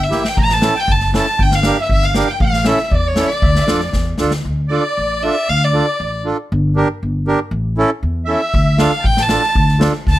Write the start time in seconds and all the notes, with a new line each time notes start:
Already playing: E5
0.03 E5
0.10 A1 A#3 E4 G4, snare
0.24 G5, snare
0.29 G5
0.37 A1 A#5, kick
0.48 A5, snare
0.53 A5
0.61 C#4 E4 A4, snare
0.75 G5
0.79 G5
0.87 F#1 A5, kick
0.92 A5
1.00 snare
1.13 C#4 E4 A4 A5, snare
1.39 G1 G5, kick
1.51 F5, snare
1.63 D4 G4 A#4, snare
1.77 E5
1.82 E5
1.88 G1 E5, kick
1.93 E5
2.02 F5, snare
2.15 D4 G4 A#4, snare
2.26 G5
2.31 G5
2.40 A1 F5, kick
2.53 snare
2.65 C#4 E4 A4 E5, snare
2.78 snare
2.90 E2 D5 E5, kick
2.95 D5
3.08 C#5
3.16 C#4 E4 A4 D5, snare
3.20 D5 E5
3.30 D5, snare
3.42 D2 E5, kick
3.48 D5
3.55 E5, snare
3.62 D5
3.67 F2 D4 F4 A4, snare
3.80 snare
3.93 E2, kick, snare
4.18 D2 D4 F4 A4, snare
4.31 snare
4.45 D2
4.68 D4 F4 A4 D5
4.73 D5
4.98 A1
5.23 D4 F4 A4 E5
5.48 D2 F5
5.64 D5
5.73 D4 F4 A4
6.00 A1
6.25 D4 F4 A4
6.52 G1
6.76 D4 G4 A#4
7.03 G1
7.27 D4 G4 A#4
7.51 A1
7.78 C#4 E4 A4
8.03 E2
8.25 C#4 E4 A4 E5
8.31 E5
8.54 D2, kick
8.77 D4 F4 A4 F5, snare
8.99 G5 A5
9.04 A1 G5, kick
9.17 A5, snare
9.22 A5
9.29 D4 F4 A4, snare
9.43 snare
9.55 D2, kick
9.68 snare
9.79 D4 F4 A4, snare
10.07 D2 A5, kick, snare
10.12 A5